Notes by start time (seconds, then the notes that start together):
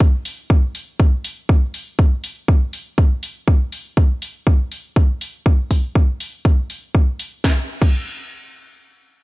0.00 kick
0.25 open hi-hat
0.50 kick
0.75 open hi-hat
1.00 kick
1.24 open hi-hat
1.49 kick
1.74 open hi-hat
1.99 kick
2.24 open hi-hat
2.48 kick
2.73 open hi-hat
2.98 kick
3.23 open hi-hat
3.48 kick
3.72 open hi-hat
3.97 kick
4.22 open hi-hat
4.47 kick
4.72 open hi-hat
4.96 kick
5.21 open hi-hat
5.46 kick
5.71 kick, open hi-hat
5.95 kick
6.20 open hi-hat
6.45 kick
6.70 open hi-hat
6.95 kick
7.19 open hi-hat
7.44 kick, snare
7.82 kick, crash